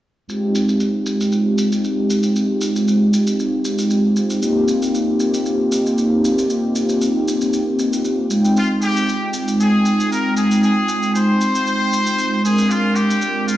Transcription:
0.28 G#3 C4 D#4 F4 G4, shaker
0.55 shaker
0.69 shaker
0.80 shaker
1.06 shaker
1.21 shaker
1.32 shaker
1.58 shaker
1.72 shaker
1.84 shaker
2.10 shaker
2.23 shaker
2.36 shaker
2.61 shaker
2.76 shaker
2.88 shaker
3.13 shaker
3.27 shaker
3.40 shaker
3.65 shaker
3.78 shaker
3.90 shaker
4.16 shaker
4.30 shaker
4.41 A#3 C4 D#4 F4 G4, shaker
4.68 shaker
4.82 shaker
4.94 shaker
5.20 shaker
5.34 shaker
5.46 shaker
5.72 shaker
5.86 shaker
5.98 shaker
6.25 shaker
6.38 shaker
6.50 shaker
6.76 shaker
6.89 shaker
7.01 shaker
7.28 shaker
7.41 shaker
7.53 shaker
7.79 shaker
7.93 shaker
8.05 shaker
8.29 G#3 C4 D#4 F4 G5, shaker
8.45 shaker
8.56 F4, shaker
8.82 G4, shaker
8.97 shaker
9.09 shaker
9.34 shaker
9.48 shaker
9.60 G#4, shaker
9.85 shaker
10.00 shaker
10.12 A#4, shaker
10.37 G#4, shaker
10.51 shaker
10.63 G#4, shaker
10.89 shaker
11.03 shaker
11.15 C5, shaker
11.41 shaker
11.55 shaker
11.67 shaker
11.93 shaker
12.07 shaker
12.18 shaker
12.43 G#3 C4 D4 F4 G#4 A#4, shaker
12.58 shaker
12.70 F4, shaker
12.96 G4, shaker
13.11 shaker
13.22 shaker
13.48 F4, shaker

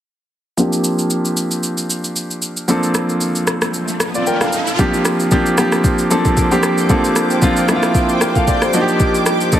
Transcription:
0.57 F3 A#3 C4 D4 G4, shaker
0.73 shaker
0.84 shaker
0.99 shaker
1.10 shaker
1.25 shaker
1.37 shaker
1.51 shaker
1.63 shaker
1.78 shaker
1.90 shaker
2.04 shaker
2.16 shaker
2.31 shaker
2.42 shaker
2.57 shaker
2.68 F3 A#3 C4 D4 A4, riser, shaker
2.83 shaker
2.95 cross-stick, shaker
3.09 shaker
3.21 shaker
3.35 shaker
3.47 cross-stick, shaker
3.62 cross-stick, shaker
3.74 shaker
3.88 shaker
4.00 cross-stick, shaker
4.15 F4 D5, shaker
4.27 A#4 G5, shaker
4.41 A4 F5, cross-stick, shaker
4.53 shaker
4.67 shaker
4.79 F3 A#3 C4 D4 G4 C5 G5 D6, kick, shaker
4.94 shaker
5.05 cross-stick, shaker
5.20 shaker
5.31 F3 A#3 C4 D4 G4, kick, shaker
5.46 shaker
5.58 F3 A#3 C4 D4 G4, cross-stick, shaker
5.72 cross-stick, shaker
5.84 kick, shaker
5.98 shaker
6.10 F3 A#3 C4 D4 A4, shaker
6.25 kick, shaker
6.37 kick, shaker
6.51 F3 A#3 C4 D4 G4, shaker
6.63 cross-stick, shaker
6.78 shaker
6.89 F3 A#3 C4 D4 A4, kick, shaker
7.04 shaker
7.16 cross-stick, shaker
7.30 shaker
7.42 F3 A#3 C4 D4 F4, kick, shaker
7.57 shaker
7.68 F3 A#3 C4 D4 E4, cross-stick, shaker
7.76 F4
7.83 cross-stick, shaker
7.95 kick, shaker
8.09 shaker
8.21 A#4 G5, cross-stick, shaker
8.35 A4 F5, kick, shaker
8.47 F4 D5, kick, shaker
8.62 C5, cross-stick, shaker
8.73 F3 A#3 D4 D#4 F#4 A#4, shaker
8.81 G4
8.88 shaker
9.00 kick, shaker
9.15 shaker
9.26 cross-stick, shaker
9.41 shaker
9.52 F3 A#3 D4 D#4 A4, kick, shaker

